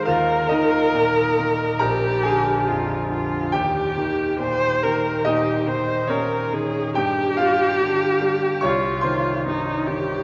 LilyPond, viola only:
\new Staff \with { instrumentName = "Viola" } { \time 4/4 \key ees \mixolydian \tempo 4 = 70 bes'2 g'4 f'8 f'8 | g'4 c''8 bes'8 g'8 c''8 bes'8 aes'8 | g'2 f'4 ees'8 g'8 | }